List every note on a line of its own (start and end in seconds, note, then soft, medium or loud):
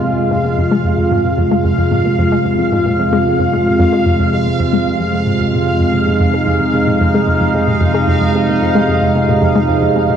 0.00 10.17 F2 medium
0.00 10.17 C3 medium
0.00 10.17 G#3 medium
0.00 5.90 F4 medium
0.00 10.17 F5 medium
0.04 0.12 F2 medium
0.18 0.26 F2 medium
0.31 0.43 G#2 medium
0.45 0.49 A#2 medium
0.58 0.63 F2 loud
0.71 0.76 G#3 medium
0.85 0.92 F2 medium
0.98 1.06 F2 medium
1.11 1.23 G#2 medium
1.25 1.30 A#2 medium
1.38 1.43 F2 medium
1.52 1.56 G#3 loud
1.65 1.73 F2 medium
1.78 1.86 F2 medium
1.92 2.04 G#2 medium
2.05 2.10 A#2 medium
2.19 2.23 F2 loud
2.32 2.37 G#3 medium
2.45 2.53 F2 medium
2.59 2.67 F2 medium
2.72 2.84 G#2 medium
2.86 2.90 A#2 medium
2.99 3.04 F2 loud
3.13 3.17 G#3 loud
3.26 3.34 F2 medium
3.39 3.47 F2 medium
3.53 3.64 G#2 medium
3.66 3.71 A#2 medium
3.80 3.84 F2 loud
3.93 3.98 G#3 medium
4.06 4.14 F2 medium
4.20 4.27 F2 medium
4.33 4.45 G#2 medium
4.47 4.51 A#2 medium
4.60 4.64 F2 loud
4.73 4.78 G#3 medium
4.87 4.94 F2 medium
5.00 5.08 F2 medium
5.13 5.21 F2 medium
5.27 5.38 G#2 medium
5.40 5.45 F2 medium
5.53 5.61 A#2 medium
5.67 5.78 F3 medium
5.80 5.85 F2 medium
5.94 6.05 C3 medium
5.94 10.17 D#4 medium
6.07 6.12 A#2 medium
6.20 6.25 F2 medium
6.34 6.39 G#3 loud
6.47 6.55 F2 medium
6.60 6.68 F2 medium
6.74 6.86 C3 medium
6.87 6.92 A#2 medium
7.01 7.06 F2 medium
7.14 7.19 G#3 medium
7.28 7.35 F2 medium
7.41 7.49 F2 medium
7.55 7.66 C3 medium
7.68 7.72 A#2 medium
7.81 7.86 F2 medium
7.94 7.99 G#3 loud
8.08 8.16 F2 medium
8.21 8.29 F2 medium
8.35 8.47 C3 medium
8.48 8.53 A#2 medium
8.62 8.66 F2 loud
8.75 8.80 G#3 medium
8.88 8.96 F2 medium
9.02 9.10 F2 medium
9.15 9.27 C3 medium
9.29 9.33 A#2 medium
9.42 9.47 F2 loud
9.55 9.60 G#3 loud
9.69 9.76 F2 medium
9.82 9.90 F2 medium
9.95 10.07 C3 medium
10.09 10.14 A#2 medium